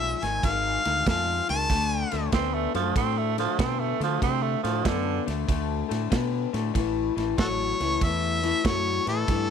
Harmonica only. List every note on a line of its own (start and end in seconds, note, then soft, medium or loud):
0.00 0.25 E5 medium
0.24 0.48 G#5 medium
0.46 1.08 F5 loud
1.08 1.46 F5 medium
1.50 2.29 A5 loud
7.39 7.47 F#4 medium
7.39 7.46 A4 medium
7.39 8.05 C#5 loud
8.03 8.67 E5 loud
8.65 9.07 C#5 medium
9.09 9.50 A4 medium